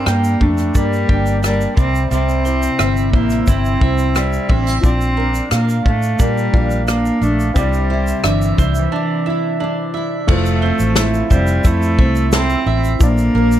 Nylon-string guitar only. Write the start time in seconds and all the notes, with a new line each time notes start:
Already playing: G2 D4 G4
0.40 D4
0.75 A#3
1.09 D4
1.44 A#3
1.78 C3
2.11 C3
2.46 E4
2.80 C4
3.13 E4
3.47 C4
3.81 E4
4.15 C4
4.50 D4
4.67 E4
5.17 D4
5.86 D4
6.19 A#3
6.54 D4
7.22 D4
7.56 C3
7.90 E4
8.24 D4
8.59 E4
8.93 D4
9.27 E4
9.61 D4
9.94 E4
10.28 F3
10.63 C4
10.96 E4
11.31 C4
11.64 E4
11.99 C4
12.33 A4
12.66 E4
13.35 A#3